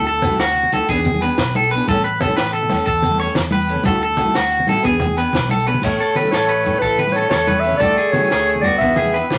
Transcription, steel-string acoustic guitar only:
0.23 0.33 E3 medium
0.23 0.33 A3 medium
0.23 0.34 E4 medium
0.23 0.34 F#4 medium
0.73 0.82 E3 medium
0.73 0.83 A3 medium
0.73 0.83 E4 medium
0.73 0.83 F#4 medium
0.89 0.99 E3 medium
0.89 0.99 B3 medium
0.89 0.99 D4 medium
0.89 1.00 G#4 medium
1.21 1.31 E3 medium
1.21 1.32 B3 medium
1.21 1.32 D4 medium
1.21 1.32 G#4 medium
1.73 1.82 E3 medium
1.73 1.83 B3 medium
1.73 1.83 D4 medium
1.73 1.83 G#4 medium
1.89 1.98 E3 medium
1.89 1.99 A3 medium
1.89 1.99 C#4 medium
1.89 1.99 A4 medium
2.23 2.32 E3 medium
2.23 2.32 A3 medium
2.23 2.32 C#4 medium
2.23 2.33 A4 medium
2.71 2.80 E3 medium
2.71 2.81 A3 medium
2.71 2.81 C#4 medium
2.71 2.81 A4 medium
3.21 3.30 E3 medium
3.21 3.30 A3 medium
3.21 3.31 C#4 medium
3.21 3.31 A4 medium
3.69 3.79 E3 medium
3.69 3.79 A3 medium
3.69 3.79 C#4 medium
3.69 3.79 A4 medium
3.83 3.94 E3 medium
3.83 3.95 A3 medium
3.83 3.95 E4 medium
3.83 3.95 F#4 medium
4.18 4.28 E3 medium
4.18 4.29 A3 medium
4.18 4.29 E4 medium
4.18 4.29 F#4 medium
4.67 4.77 E3 medium
4.67 4.79 E4 medium
4.67 4.79 F#4 medium
4.67 muted steel-string acoustic guitar stroke medium
4.83 4.93 B3 medium
4.83 4.94 D4 medium
4.83 4.94 G#4 medium
5.16 5.27 B3 medium
5.16 5.28 D4 medium
5.16 5.28 G#4 medium
5.66 5.76 B3 medium
5.66 5.77 D4 medium
5.66 5.77 G#4 medium
5.82 5.93 E3 medium
5.82 5.93 A3 medium
5.82 5.93 C#4 medium
5.82 5.94 A4 medium
6.15 6.26 E3 medium
6.15 6.26 A3 medium
6.15 6.26 C#4 medium
6.15 6.27 A4 medium
6.64 6.75 E3 medium
6.64 6.76 C#4 medium
6.64 6.76 A4 medium
6.64 muted steel-string acoustic guitar stroke medium
7.16 7.26 E3 medium
7.16 7.26 A3 medium
7.16 7.27 C#4 medium
7.16 7.27 A4 medium
7.63 7.74 E3 medium
7.63 7.74 A3 medium
7.63 7.75 C#4 medium
7.63 7.75 A4 medium
7.80 7.91 E3 medium
7.80 7.91 A3 medium
7.80 7.91 E4 medium
7.80 7.92 F#4 medium
8.13 8.24 E3 medium
8.13 8.24 A3 medium
8.13 8.25 E4 medium
8.13 8.25 F#4 medium
8.62 8.74 A3 medium
8.62 8.74 E4 medium
8.62 8.74 F#4 medium
8.62 muted steel-string acoustic guitar stroke medium
8.80 8.90 E3 medium
8.80 8.91 B3 medium
8.80 8.91 D4 medium
8.80 8.91 G#4 medium
9.14 9.24 E3 medium
9.14 9.25 D4 medium

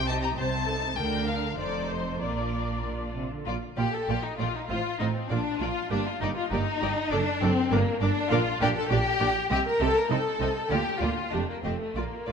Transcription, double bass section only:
0.00 0.30 C2 medium
0.38 0.90 C2 medium
0.97 1.54 D2 soft
1.58 2.19 F1 soft
2.21 3.26 A#1 soft
3.47 3.55 A#1 soft
3.78 3.86 A#1 medium
4.09 4.17 A#1 medium
4.40 4.48 A#1 medium
4.70 4.78 A1 soft
5.00 5.08 A1 medium
5.30 5.38 A#1 medium
5.60 5.68 A#1 medium
5.91 5.99 G1 medium
6.21 6.29 G1 medium
6.51 6.59 G1 medium
6.82 6.90 G1 medium
7.12 7.20 F#1 medium
7.42 7.50 F#1 medium
7.72 7.80 G1 medium
8.01 8.09 G1 medium
8.31 8.39 A#1 medium
8.60 8.68 A#1 medium
8.91 8.99 A#1 medium
9.21 9.29 A#1 medium
9.50 9.58 C2 medium
9.80 9.88 C2 medium
10.10 10.18 C2 medium
10.40 10.48 C2 medium
10.71 10.79 D2 medium
11.01 11.09 D2 medium
11.32 11.40 F1 medium
11.64 11.72 F1 medium
11.95 12.03 A#1 soft
12.28 12.32 A#1 soft

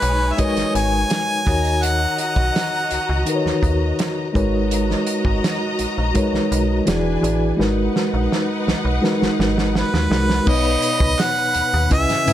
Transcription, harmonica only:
0.00 0.34 B4 medium
0.33 0.41 E5 medium
0.40 0.75 D#5 medium
0.76 1.85 G#5 loud
1.84 2.19 F#5 medium
2.20 3.23 F#5 medium
9.77 10.49 B4 medium
10.48 11.23 D#5 loud
11.21 11.92 F#5 loud
11.93 12.33 E5 loud

